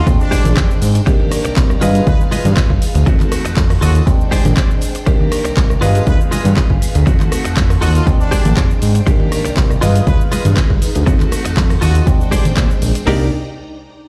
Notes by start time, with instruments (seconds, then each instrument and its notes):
0.06 analog synth bass A#1, grand piano G#3 C4 D4 G5, string machine G#3 D4 C5 G5, kick, closed hi-hat, tambourine, shaker
0.20 trumpet section D4, shaker
0.31 clean electric guitar G4 G#4 C5 D5, kick, open hi-hat, tambourine, low conga, shaker
0.45 analog synth bass A#1, closed hi-hat, tambourine, high conga, shaker
0.56 analog synth bass F2, clean electric guitar G4 G#4 C5 D5, kick, clap, closed hi-hat, tambourine, shaker
0.71 shaker
0.81 analog synth bass G#2, muted clean electric guitar stroke, open hi-hat, tambourine, shaker
0.95 muted clean electric guitar stroke, closed hi-hat, tambourine, shaker
1.06 analog synth bass C2, grand piano A#3 D4 D#4 G4, string machine D5 A#5, muted clean electric guitar stroke, kick, closed hi-hat, shaker
1.20 muted clean electric guitar stroke, high conga
1.32 cross-stick, open hi-hat, tambourine, shaker
1.45 analog synth bass C2, muted clean electric guitar stroke, closed hi-hat, tambourine, shaker
1.56 analog synth bass C2, muted clean electric guitar stroke, kick, clap, closed hi-hat, tambourine, low conga, shaker
1.70 muted clean electric guitar stroke, cross-stick, shaker
1.81 analog synth bass G2, grand piano G#3 B3 D#4 F4, clean electric guitar F4 G#4 B4 D#5, string machine G#4 B4 F5, open hi-hat, tambourine, high conga, shaker
1.95 closed hi-hat, tambourine, shaker
2.07 analog synth bass D2, trumpet section B4, kick, closed hi-hat, shaker
2.21 shaker
2.31 clean electric guitar F4 G#4 B4 D#5, open hi-hat, tambourine, low conga, shaker
2.45 analog synth bass G2, closed hi-hat, tambourine, high conga, shaker
2.56 clean electric guitar F4 G#4 B4 D#5, kick, clap, closed hi-hat, shaker
2.70 analog synth bass G1, kick
2.81 muted clean electric guitar stroke, open hi-hat, tambourine, shaker
2.95 analog synth bass D2, muted clean electric guitar stroke, closed hi-hat, tambourine, shaker
3.06 analog synth bass F2, grand piano A3 C4 D#4 F#4, string machine A4 F#5, muted clean electric guitar stroke, kick, closed hi-hat, shaker
3.20 muted clean electric guitar stroke, clap, high conga, shaker
3.32 cross-stick, open hi-hat, tambourine, shaker
3.45 analog synth bass F2, muted clean electric guitar stroke, closed hi-hat, tambourine, shaker
3.56 analog synth bass F2, muted clean electric guitar stroke, kick, clap, closed hi-hat, tambourine, low conga, shaker
3.70 muted clean electric guitar stroke, cross-stick, open hi-hat, shaker
3.81 analog synth bass D#2, clean electric guitar F4 F#4 A4 D#5, trumpet section F#4, open hi-hat, tambourine, high conga, shaker
3.95 closed hi-hat, tambourine, shaker
4.06 grand piano G#3 C4 D4 G5, string machine G#3 D4 C5 G5, kick, closed hi-hat, tambourine, shaker
4.21 shaker
4.31 clean electric guitar G4 G#4 C5 D5, kick, open hi-hat, tambourine, low conga, shaker
4.45 analog synth bass A#1, closed hi-hat, tambourine, high conga, shaker
4.56 clean electric guitar G4 G#4 C5 D5, kick, clap, closed hi-hat, shaker
4.71 shaker
4.81 muted clean electric guitar stroke, open hi-hat, tambourine, shaker
4.95 muted clean electric guitar stroke, closed hi-hat, tambourine, shaker
5.06 analog synth bass C2, grand piano A#3 D4 D#4 G4, string machine D5 A#5, muted clean electric guitar stroke, kick, closed hi-hat, shaker
5.20 muted clean electric guitar stroke, high conga
5.32 cross-stick, open hi-hat, tambourine, shaker
5.45 analog synth bass C2, muted clean electric guitar stroke, closed hi-hat, tambourine, shaker
5.56 analog synth bass C2, muted clean electric guitar stroke, kick, clap, closed hi-hat, tambourine, low conga, shaker
5.70 muted clean electric guitar stroke, cross-stick, shaker
5.81 analog synth bass G2, grand piano G#3 B3 D#4 F4, clean electric guitar F4 G#4 B4 D#5, string machine G#4 B4 F5, open hi-hat, tambourine, high conga, shaker
5.95 closed hi-hat, tambourine, shaker
6.06 analog synth bass D2, trumpet section B4, kick, closed hi-hat, tambourine, shaker
6.21 shaker
6.31 clean electric guitar F4 G#4 B4 D#5, open hi-hat, tambourine, low conga, shaker
6.45 analog synth bass G2, closed hi-hat, tambourine, high conga, shaker
6.56 clean electric guitar F4 G#4 B4 D#5, kick, clap, closed hi-hat, tambourine, shaker
6.70 analog synth bass G1, kick
6.81 muted clean electric guitar stroke, open hi-hat, tambourine, shaker
6.94 analog synth bass D2, muted clean electric guitar stroke, closed hi-hat, tambourine, shaker
7.06 analog synth bass F2, grand piano A3 C4 D#4 F#4, string machine A4 F#5, muted clean electric guitar stroke, kick, closed hi-hat, tambourine, shaker
7.20 muted clean electric guitar stroke, clap, high conga, shaker
7.32 cross-stick, open hi-hat, tambourine, shaker
7.45 analog synth bass F2, muted clean electric guitar stroke, closed hi-hat, tambourine, shaker
7.56 analog synth bass F2, muted clean electric guitar stroke, kick, clap, closed hi-hat, tambourine, low conga, shaker
7.70 muted clean electric guitar stroke, cross-stick, open hi-hat, shaker
7.81 analog synth bass D#2, clean electric guitar F4 F#4 A4 D#5, trumpet section F#4, open hi-hat, tambourine, high conga, shaker
7.95 trumpet section F4, closed hi-hat, tambourine, shaker
8.06 analog synth bass A#1, grand piano G#3 C4 D4 G5, string machine G#3 D4 C5 G5, kick, closed hi-hat, tambourine, shaker
8.20 trumpet section D4, shaker
8.31 clean electric guitar G4 G#4 C5 D5, kick, open hi-hat, tambourine, low conga, shaker
8.45 analog synth bass A#1, closed hi-hat, tambourine, high conga, shaker
8.56 clean electric guitar G4 G#4 C5 D5, kick, clap, closed hi-hat, shaker
8.71 shaker
8.81 analog synth bass G#2, muted clean electric guitar stroke, open hi-hat, tambourine, shaker
8.95 muted clean electric guitar stroke, closed hi-hat, tambourine, shaker
9.06 analog synth bass C2, string machine D#3 D5 A#5, grand piano A#3 D4 D#4 G4, muted clean electric guitar stroke, kick, closed hi-hat, tambourine, shaker
9.20 muted clean electric guitar stroke, high conga
9.32 cross-stick, open hi-hat, tambourine, shaker
9.45 analog synth bass C2, muted clean electric guitar stroke, closed hi-hat, tambourine, shaker
9.56 analog synth bass C2, muted clean electric guitar stroke, kick, clap, closed hi-hat, tambourine, low conga, shaker
9.70 muted clean electric guitar stroke, cross-stick, shaker
9.81 analog synth bass G2, grand piano G#3 B3 D#4 F4, string machine D#4 G#4 B4 F5, clean electric guitar F4 G#4 B4 D#5, open hi-hat, tambourine, high conga, shaker
9.94 closed hi-hat, tambourine, shaker
10.07 analog synth bass D2, trumpet section B4, kick, closed hi-hat, tambourine, shaker
10.21 shaker
10.31 clean electric guitar F4 G#4 B4 D#5, open hi-hat, tambourine, low conga, shaker
10.45 analog synth bass G2, closed hi-hat, tambourine, high conga, shaker
10.57 clean electric guitar F4 G#4 B4 D#5, kick, clap, closed hi-hat, tambourine, shaker
10.70 analog synth bass G1, kick
10.82 muted clean electric guitar stroke, open hi-hat, tambourine, shaker
10.95 analog synth bass D2, muted clean electric guitar stroke, closed hi-hat, tambourine, shaker
11.06 analog synth bass F2, grand piano A3 C4 D#4 F#4, string machine A4 F#5, muted clean electric guitar stroke, kick, closed hi-hat, shaker
11.20 muted clean electric guitar stroke, clap, high conga, shaker
11.32 cross-stick, open hi-hat, tambourine, shaker
11.45 analog synth bass F2, muted clean electric guitar stroke, closed hi-hat, tambourine, shaker
11.56 analog synth bass F2, muted clean electric guitar stroke, kick, clap, closed hi-hat, tambourine, low conga, shaker
11.70 muted clean electric guitar stroke, cross-stick, open hi-hat, shaker
11.81 analog synth bass D#2, clean electric guitar F4 F#4 A4 D#5, trumpet section F#4, open hi-hat, tambourine, high conga, shaker
11.95 closed hi-hat, tambourine, shaker
12.06 grand piano G#3 C4 D4 G5, string machine G#3 D4 C5 G5, kick, closed hi-hat, tambourine, shaker
12.21 shaker
12.31 clean electric guitar G4 G#4 C5 D5, kick, open hi-hat, tambourine, low conga, shaker
12.45 analog synth bass A#2, closed hi-hat, tambourine, high conga, shaker
12.56 analog synth bass A#2, clean electric guitar G4 G#4 C5 D5, kick, clap, closed hi-hat, tambourine, shaker
12.71 shaker
12.82 analog synth bass A#1, muted clean electric guitar stroke, open hi-hat, tambourine, shaker
12.95 muted clean electric guitar stroke, closed hi-hat, tambourine, shaker
13.06 analog synth bass C2, grand piano A#3 D4 D#4 G4, string machine D#4 D5 A#5, clean electric guitar D#4 A#4 D5, snare, open hi-hat